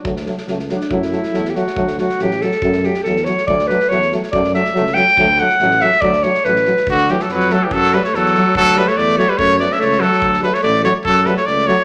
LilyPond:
<<
  \new Staff \with { instrumentName = "Trumpet" } { \time 2/4 \key d \major \tempo 4 = 142 r2 | r2 | r2 | r2 |
r2 | r2 | r2 | r2 |
fis'8 g'16 a'16 b'8 a'16 g'16 | a'8 b'16 cis''16 a'4 | a'8 b'16 cis''16 d''8 cis''16 b'16 | cis''8 d''16 e''16 cis''8 a'8~ |
a'8 b'16 cis''16 d''8 cis''8 | a'8 b'16 cis''16 d''8 cis''8 | }
  \new Staff \with { instrumentName = "Alto saxophone" } { \time 2/4 \key d \major r4. d'8 | e'4~ \tuplet 3/2 { e'8 g'16 fis'8.~ } | fis'8 fis'8 g'8 a'8~ | a'8 g'8 a'8 cis''8 |
d''8 b'8 cis''8 r8 | d''8 e''4 g''8~ | g''8 fis''4 e''8 | d''8 cis''8 b'4 |
d8 e16 fis16 fis8 fis16 e16 | fis8 g16 a16 fis4 | fis8 g16 a16 a8 a16 g16 | a8 b16 cis'16 a8 fis8~ |
fis8 g16 a16 a8 a8 | fis8 g16 a16 a8 a8 | }
  \new Staff \with { instrumentName = "Euphonium" } { \time 2/4 \key d \major a8 a8 a8 a8 | a8 a8 a8 a8 | a8 a8 a8 a8 | a8 a8 a8 a8 |
a8 a8 a8 a8 | a8 a8 a8 a8 | a8 a8 a8 a8 | a8 a8 a8 a8 |
r8 a8 r8 a8 | r8 a8 r8 a8 | r8 a8 r8 a8 | r8 a8 r8 a8 |
r8 a8 r8 a8 | r8 a8 r8 a8 | }
  \new Staff \with { instrumentName = "Euphonium" } { \clef bass \time 2/4 \key d \major fis8 fis8 fis8 fis8 | fis8 fis8 fis8 fis8 | fis8 fis8 fis8 fis8 | fis8 fis8 fis8 fis8 |
fis8 fis8 fis8 fis8 | fis8 fis8 fis8 fis8 | fis8 fis8 fis8 fis8 | fis8 fis8 fis8 fis8 |
r8 fis8 r8 fis8 | r8 fis8 r8 fis8 | r8 fis8 r8 fis8 | r8 fis8 r8 fis8 |
r8 fis8 r8 fis8 | r8 fis8 r8 fis8 | }
  \new Staff \with { instrumentName = "Tuba" } { \clef bass \time 2/4 \key d \major d,4 cis,4 | fis,4 e,4 | d,4 a,,4 | fis,4 e,4 |
d,4 e,4 | fis,4 cis,4 | d,4 a,,4 | d,4 a,,4 |
d,4 f,4 | fis,4 e,4 | d,4 e,4 | fis,4 cis,4 |
d,4 a,,4 | fis,4 cis,4 | }
  \new DrumStaff \with { instrumentName = "Drums" } \drummode { \time 2/4 bd16 sn16 sn16 sn16 sn16 sn16 sn16 sn16 | bd16 sn16 sn16 sn16 sn16 sn16 sn16 sn16 | bd16 sn16 sn16 sn16 sn16 sn16 sn16 sn16 | bd16 sn16 sn16 sn16 sn16 sn16 sn16 sn16 |
bd16 sn16 sn16 sn16 sn16 sn16 sn16 sn16 | bd16 sn16 sn16 sn16 sn16 sn16 sn16 sn16 | bd8 sn16 sn16 sn16 sn16 sn16 sn16 | bd16 sn16 sn16 sn16 sn16 sn16 sn16 sn16 |
bd16 sn16 sn16 sn16 sn16 sn16 sn8 | bd16 sn16 sn16 sn16 sn16 sn16 sn8 | bd16 sn16 sn16 sn16 sn16 sn16 sn8 | bd16 sn16 sn16 sn16 sn16 sn16 sn16 sn16 |
bd16 sn16 sn16 sn16 sn16 sn16 sn8 | bd16 sn16 sn16 sn16 sn16 sn16 sn8 | }
>>